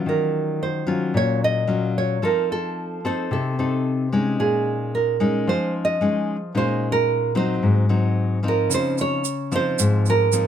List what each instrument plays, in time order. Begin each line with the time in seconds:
Already playing: nylon-string guitar F#3 C#4 F4
0.06 nylon-string guitar D#3 A#4
0.63 nylon-string guitar C5
0.87 nylon-string guitar F#3 C#4 F4
1.14 nylon-string guitar A#2 C#5
1.44 nylon-string guitar D#5
1.67 nylon-string guitar F#3 C#4 F4
1.98 nylon-string guitar C#5
2.22 nylon-string guitar F3 C4 D#4 A4 A#4
2.52 nylon-string guitar A4
3.05 nylon-string guitar C4 D#4 A4 C5
3.31 nylon-string guitar C3 A4
3.59 nylon-string guitar C4 D#4 A4
4.12 nylon-string guitar G#3 C#4 D#4
4.39 nylon-string guitar A#2 G#4
4.95 nylon-string guitar A#4
5.20 nylon-string guitar G#3 C#4 D#4
5.47 nylon-string guitar F3 C5
5.85 nylon-string guitar D#5
6.01 nylon-string guitar G#3 C#4 D#4
6.55 nylon-string guitar A#2 G#3 C#4 D#4 C5
6.92 nylon-string guitar A#4
7.35 nylon-string guitar F#3 C4 D#4 C5
7.63 nylon-string guitar G#2
7.89 nylon-string guitar F#3 C4 D#4
8.43 nylon-string guitar F3 C4 D#4
8.48 nylon-string guitar A#4
8.70 nylon-string guitar C#3, shaker
8.74 nylon-string guitar C5
8.98 nylon-string guitar C#5, shaker
9.25 shaker
9.52 nylon-string guitar F3 C4 D#4 C5, shaker
9.79 nylon-string guitar G#2, shaker
10.06 nylon-string guitar A#4, shaker
10.32 nylon-string guitar F3 C4 D#4, shaker